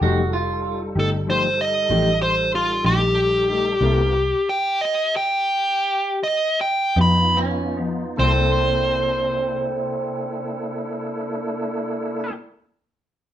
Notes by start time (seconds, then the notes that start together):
0.01 F1 F3 G3 A3 D#4 F#4 G4 A4
0.33 F4
0.95 G1 A3 D#4 G4 A4
1.27 F3 A3 D#4 G4 C5
1.61 D#5
1.89 A1 F3 A3 D#4 G4
2.22 C5
2.55 F4
2.84 A#1 A3 D#4 G4
3.48 A3 D#4 G4
3.81 C2 C3 A#3 B3 D#4 E4 F4 A4 A#4
4.49 G5
4.81 D#5
5.16 G5
6.23 D#5
6.61 G5
6.96 F2 F3 B3 D#4 F4
7.01 B5
7.37 C#4
7.77 F3 B3 D#4
8.16 C2 C3 A#3 C4 D4 E4 A4 C5
8.21 A#3 E4
8.26 A4